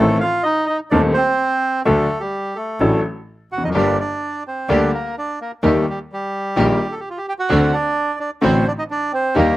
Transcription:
Already playing: A3 A4
0.00 A1 A2 D#3 A3 C4 A4
0.20 F4 F5
0.43 D#4 D#5
0.66 D#4 D#5
0.90 D#1 D#2 D#3 A3 C4 D4 A4 D5
1.14 C4 C5
1.85 D2 D3 F#3 A3 D4 A4
2.20 G3 G4
2.56 A3 A4
2.80 A1 A2 F#3 A3 D4 A4
3.51 F1 F#4 F#5
3.58 E2
3.64 F2 D#4 D#5
3.70 F#2
3.74 G1 G2 D3 G3 A#3 D4 G4 D5
4.00 D4 D5
4.47 C4 C5
4.69 D2 D3 G3 A#3 D4 G4 D5
4.93 A#3 A#4
5.18 D4 D5
5.41 A#3 A#4
5.63 D#2 D#3 G3 A3 A#3 D#4 G4 A4
5.89 G3 G4
6.12 G3 G4
6.56 A#1 A#2 D#3 G3 A#3 D#4 G4
6.92 A4
7.00 G4
7.10 F4
7.18 G4
7.28 G4 G5
7.39 F#4 F#5
7.49 D2 D3 A3 C4 D4 F#4
7.73 D4 D5
8.19 D4 D5
8.41 A1 A2 D3 A3 C4 D4 F#4 C5
8.67 D4 D5
8.78 D#4 D#5
8.90 D4 D5
9.13 C4 C5
9.35 D#2 D#3 G3 A#3 D#4 G4 A#4

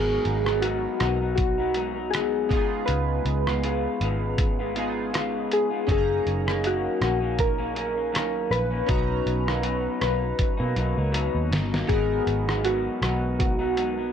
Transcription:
Already playing: G#1 G#2 F#3 B3 D#4 F#4 G#4 A#4
0.25 G#1, closed hi-hat
0.46 F#3 B3 D#4, cross-stick
0.62 G#2 F#3 B3 D#4 F#4, closed hi-hat
0.99 B1 G#2 F#3 B3 D#4, cross-stick, closed hi-hat
1.21 F#3 B3 D#4
1.35 F#4, kick, closed hi-hat
1.58 F#3 B3 D#4
1.74 G#2 F#3 B3 D#4, closed hi-hat
1.94 F#3 B3 D#4
2.10 G#2 F#3 B3 G#4, closed hi-hat
2.15 D#4, cross-stick
2.49 C#2 C#3 G#3 B3 D#4 F4, kick, closed hi-hat
2.54 G#4
2.86 C#2 B4, closed hi-hat
3.25 C#2, closed hi-hat
3.47 G#3 B3 F4, cross-stick
3.64 C#3 G#3 B3 F4, closed hi-hat
4.01 G#1 C#3 G#3 B3 F4, closed hi-hat
4.38 kick, closed hi-hat
4.59 G#3 B3 F4
4.75 C#3 G#3 B3 D#4 F4 G#4, closed hi-hat
5.13 C#3 G#3 B3 F4, cross-stick, closed hi-hat
5.52 G#4, closed hi-hat
5.71 G#3 B3 F4
5.87 F#1 F#2 D#3 A#3 C#4 D#4 G#4, kick, closed hi-hat
5.91 G#4 A4
5.98 A#5
6.27 F#1, closed hi-hat
6.46 D#3 A#3 C#4, cross-stick
6.63 F#2 D#3 A#3 C#4 F#4, closed hi-hat
7.01 A#1 F#2 D#3 A#3 C#4, cross-stick, closed hi-hat
7.20 D#3 A#3 C#4
7.39 A#4, kick, closed hi-hat
7.58 D#3 A#3 C#4
7.74 F#2 D#3 A#3 C#4, closed hi-hat
7.96 D#3 A#3 C#4
8.12 F#2 D#3 A#3 C#4, cross-stick, closed hi-hat
8.51 A#1 B4, closed hi-hat
8.70 D#3 A#3 C#4
8.86 B1 B2 F#3 C#4 D#4 F#4, kick, closed hi-hat
8.92 A#5
9.26 B1, closed hi-hat
9.47 F#3 A#3 D#4, cross-stick
9.62 B2 F#3 D#4, closed hi-hat
10.01 B1 B2 F#3 A#3 D#4 B4, cross-stick, closed hi-hat
10.20 F#3 D#4
10.39 kick, closed hi-hat
10.57 B2 F#3 A#3 D#4
10.76 B1 B2 F#3 A#3 D#4, closed hi-hat
10.96 C#2 F#3 A#3 D#4
11.12 B2 F#3 D#4, closed hi-hat
11.35 D#2
11.51 G1, snare, closed hi-hat
11.72 F#3 A#3 D#4, snare
11.87 G#1 G#2 F#3 B3 D#4 F#4 G#4, kick, closed hi-hat
11.92 A#4
12.27 G#1, closed hi-hat
12.47 F#3 B3 D#4, cross-stick
12.63 G#2 F#3 B3 D#4 F#4, closed hi-hat
13.01 B1 G#2 F#3 B3 D#4, cross-stick, closed hi-hat
13.39 F#4, kick, closed hi-hat
13.59 F#3 B3 D#4
13.76 G#2 F#3 B3 D#4, closed hi-hat
13.97 F#3 B3 D#4

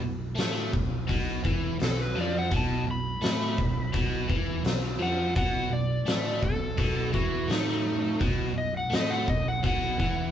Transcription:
0.02 B1 B2
0.35 A2 A3, snare, open hi-hat
0.72 B1 B2, kick
1.07 B1 B2, kick, open hi-hat
1.44 E2 E3, kick
1.80 B1 B2, snare, open hi-hat
1.84 A4
2.01 B4
2.15 F2 F3
2.21 D5
2.38 F#5
2.51 B1 B2, kick, open hi-hat
2.56 A5
2.87 B1 B2
2.91 B5
3.21 A2 A3, snare, open hi-hat
3.57 B1 B2, kick
3.93 B1 B2, kick, open hi-hat
4.29 E2 E3, kick
4.63 B1 B2, snare, open hi-hat
4.99 F2 F3 F#5
5.35 B1 B2 F#5, kick, open hi-hat
5.70 B1 B2 D5
6.05 A2 A3, snare, open hi-hat
6.42 B1 B2 A4, kick
6.78 B1 B2, kick, open hi-hat
7.13 E2 E3 F#4, kick
7.47 A2 A3 D#4, snare, open hi-hat
8.19 B1 B2, kick, open hi-hat
8.54 B1 B2 D#5
8.77 F#5
8.90 A2 A3, snare, open hi-hat
8.95 D#5
9.11 F#5
9.27 B1 B2 D#5, kick
9.48 F#5
9.63 B1 B2 F#5, kick, open hi-hat
9.99 E2 E3, kick

